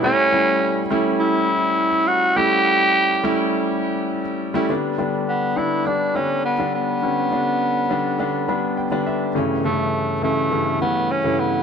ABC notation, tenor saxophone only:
X:1
M:4/4
L:1/8
Q:1/4=103
K:Ador
V:1 name="Tenor saxophone"
^C3 z E3 F | G4 z4 | [K:Glyd] z2 B, E D C B, B,- | B,6- B, z |
z A,2 A,2 B, C B, |]